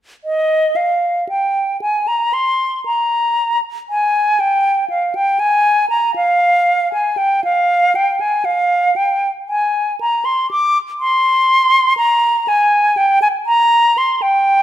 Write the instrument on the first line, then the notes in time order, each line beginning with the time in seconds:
flute
0.24 D#5
0.76 F5
1.29 G5
1.81 G#5
2.08 A#5
2.33 C6
2.85 A#5
3.90 G#5
4.40 G5
4.90 F5
5.15 G5
5.39 G#5
5.90 A#5
6.16 F5
6.93 G#5
7.17 G5
7.44 F5
7.95 G5
8.21 G#5
8.45 F5
8.96 G5
9.48 G#5
10.01 A#5
10.25 C6
10.51 D6
11.00 C6
11.97 A#5
12.48 G#5
12.97 G5
13.22 G#5
13.46 A#5
13.98 C6
14.22 G5